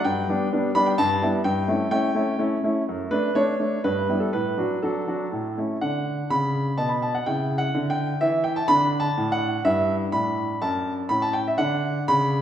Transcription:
grand piano
0.04 G2 G5
0.29 G3 B3 D4
0.53 G3 B3 D4
0.75 G3 B3 D4 B5
0.86 G5
0.98 G2 A5
1.22 G3 B3 E4
1.44 G2 G5
1.68 A3 C#4 E4
1.91 A3 C#4 E4 G5
2.15 A3 C#4 E4
2.39 A3 C#4 E4
2.63 A3 C#4 E4
2.89 F#2
3.11 A3 D4 B4
3.35 A3 D4 C#5
3.59 A3 D4
3.84 G2 B4
4.09 G3 B3 E4
4.20 A4
4.33 A2 B4
4.57 F#3 D4 F#4
4.82 F#3 D4 F#4 A4
5.07 F#3 D4 F#4
5.32 A2
5.58 A3 C#4 E4
5.81 D3 D4 F#5
6.30 C#3 B5
6.78 B2 A5
6.89 B5
7.02 A5
7.15 F#5
7.26 C#3 E4 G5
7.58 F#5
7.74 D3
7.90 G5
8.21 E3 E5
8.44 G5
8.56 A5
8.68 D3 D4 B5
9.00 A5
9.17 A2
9.32 F#5
9.65 G2 E4 E5
10.12 A2 D4 B5
10.62 F#2 A5
11.09 A2 C#4 B5
11.22 A5
11.33 G5
11.48 E5
11.58 D3 D4 F#5
12.08 C#3 B5

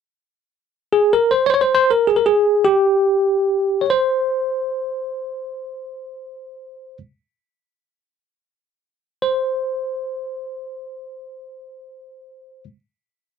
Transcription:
tine electric piano
0.93 G#4
1.13 A#4
1.31 C5
1.46 C5 C#5
1.54 C#5
1.61 C5
1.75 C5
1.90 A#4
2.07 G#4
2.16 A#4
2.26 G#4
2.65 G4
3.81 C#5
3.90 C5
9.22 C5

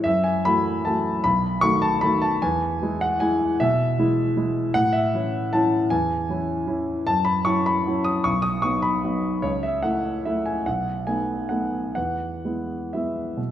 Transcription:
grand piano
0.04 F#2 E5
0.24 G#5
0.45 E3 A3 F#4 B5
0.85 E3 A3 F#4 A5
1.24 B1 B5
1.61 D#3 A3 F#4 C#6
1.82 A5
2.01 D#3 A3 F#4 B5
2.22 A5
2.42 E2 G#5
2.82 E3 G#3 E4
3.01 F#5
3.20 E3 G#3 E4 G#5
3.60 B2 E5
3.98 E3 G#3 E4
4.36 E3 G#3 E4
4.74 A2 F#5
4.93 E5
5.14 E3 C#4 E4
5.53 E3 C#4 E4 A5
5.90 E2 G#5
6.29 E3 C#4 E4
6.67 E3 C#4 E4
7.07 F#2 A5
7.25 B5
7.45 F#3 C#4 E4 C#6
7.66 B5
7.87 F#3 C#4 E4
8.04 D#6
8.24 B1 C#6
8.42 D#6
8.62 F#3 B3 D#4 C#6
8.82 B5
9.04 F#3 B3 D#4
9.42 C#2 C#5
9.63 E5
9.83 A3 E4 F#5
10.25 A3 E4 E5
10.46 G#5
10.66 B1 F#5
11.07 A3 B3 D#4 G#5
11.49 A3 B3 D#4 F#5
11.95 E2 F#5
12.45 G#3 B3 E4
12.93 G#3 B3 E4 E5
13.37 B2

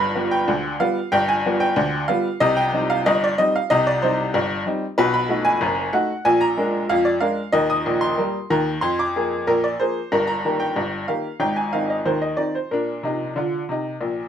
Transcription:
upright piano
Already playing: G1 G2
0.00 B5
0.15 G3 B3 F4
0.31 G5
0.48 D2 D3
0.80 G3 B3 F4 F5
1.12 G1 G2 G5
1.28 G#5
1.46 G3 B3 F4
1.60 G5
1.76 D2 D3
2.08 G3 B3 F4 F5
2.40 C2 C3 D#5
2.57 G5
2.73 G3 C4 D#4
2.90 F5
3.06 G1 G2 D#5
3.24 D5
3.38 G3 C4 D#4 D#5
3.56 F5
3.70 C2 C3 D#5
3.87 D5
4.02 G3 C4 D#4 C5
4.34 G1 G2
4.66 G3 C4 D#4
4.98 B1 B2 B4
5.14 B5
5.29 A3 D#4 F#4
5.45 G#5
5.61 F#1 F#2
5.93 A3 D#4 F#4 F#5
6.25 A#1 A#2 G#5
6.41 A#5
6.57 G#3 D4 A#4
6.89 F2 F3 F5
7.05 D5
7.21 G#3 D4 A#4 F5
7.52 D#2 D#3 D#5
7.70 D#6
7.86 A#1 A#2
8.01 C6
8.18 G3 A#3 A#4
8.50 D#2 D#3 A#5
8.81 F2 F3 C6
8.99 D6
9.16 F3 A#3 G#4
9.47 A#1 A#2 A#4
9.64 D5
9.80 F3 A#3 G#4 C5
10.12 G1 G2 A#4
10.27 A#5
10.45 D#3 A#3 G4
10.60 G5
10.76 G1 G2
11.08 D#3 A#3 G4 F5
11.40 G#1 G#2 G5
11.56 G#5
11.73 D#3 C4 D#4 F5
11.90 D#5
12.06 D#2 D#3 C5
12.22 D#5
12.37 D#3 C4 D#4 D5
12.55 C5
12.71 A#2 D4 A#4
13.03 C3 D#4
13.36 D3 F4
13.69 C3 D#4
14.01 A#1 A#2

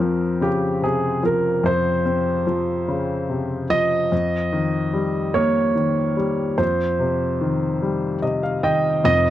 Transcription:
grand piano
Already playing: F2 C4 A#4
0.00 F3
0.41 C#3 G4
0.82 C3 G#4
1.23 F3 A#4
1.64 F2 C5
2.06 C4
2.47 F3
2.88 C#3
3.29 C3
3.70 F3 D#5
4.12 F2
4.53 D#3
4.93 G3
5.34 A#3 C#5
5.75 D#3
6.17 G3
6.58 F2 C5
6.99 C3
7.41 D#3
7.82 G3
8.22 C3 D#5
8.43 F5
8.63 D#3 D#5 G5
9.04 F1 F2 D#5

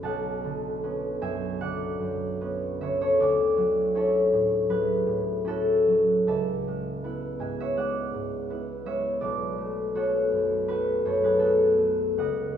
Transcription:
harp
Already playing: B3 C#4 B4
0.03 B1 F#5 A5
0.44 D3
0.83 B3 C#4
1.21 F#2 E5 G#5
1.60 D3 D5 F#5
2.00 F#2
2.41 B3 C#4
2.81 D3 C#5 E5
3.01 A4 C#5
3.20 D2 A4 D5
3.57 F#3
3.95 C#4 E4 A4 C#5
4.33 A2
4.69 F#3 G#4 B4
5.06 A2
5.45 C#4 E4 F#4 A4
5.88 F#3
6.27 C#2 E5 A5
6.67 G#3
7.04 B3 E4
7.39 G#2 E5 G#5
7.60 C#5 E5
7.77 G#3 D5 F#5
8.14 G#2
8.50 B3 E4
8.86 G#3 C#5 E5
9.21 B1 B4 D5
9.58 A3
9.95 B3 F#4 A4 C#5
10.31 F#2
10.68 A3 F#4 B4
11.05 F#2 A4 C#5
11.24 G#4 B4
11.39 B3 F#4 A4
11.78 A3
12.18 C#2 D#5 F#5

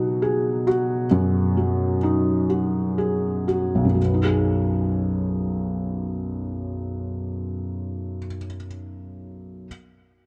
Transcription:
felt piano
Already playing: B2 F#3 D#4 F#4
0.22 G#4
0.67 F#4
1.11 F#2
1.57 F#3
2.03 D#4
2.50 F#4
2.98 G#4
3.48 F#4
3.75 B1
3.85 F#2
3.95 F#3
4.04 B3
4.14 D#4
4.24 G#4

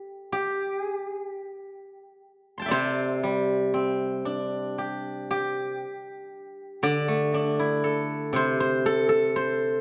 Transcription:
guzheng
Already playing: G4
0.32 G4
0.82 G#4
0.95 G4
1.10 G#4
1.23 G4
2.58 A5 C6
2.62 E5 G5
2.68 C3 C5 D5
3.23 G3
3.74 C4
4.25 D4
4.78 G4
5.31 G4
6.83 D3 D5
7.08 A3
7.34 D4 D#5
7.50 D5
7.59 E4
7.65 D#5
7.79 D5
7.84 A4
8.33 C3 C5
8.60 C5
8.86 A4
9.09 A4
9.36 C5

